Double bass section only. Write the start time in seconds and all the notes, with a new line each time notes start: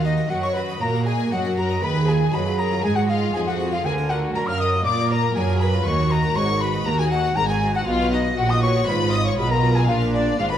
Already playing: D#2
0.29 F#2
0.81 A#2
1.32 F#2
1.83 D#2
2.33 F#2
2.84 G#2
3.35 F2
3.85 D2
4.35 F#2
4.86 A#2
5.35 F#2
5.86 D#2
6.36 G#1
6.86 D#2
7.37 G#1
7.87 B1
8.38 A#1
8.88 G#1
9.38 B1
9.89 A#1
10.39 G#1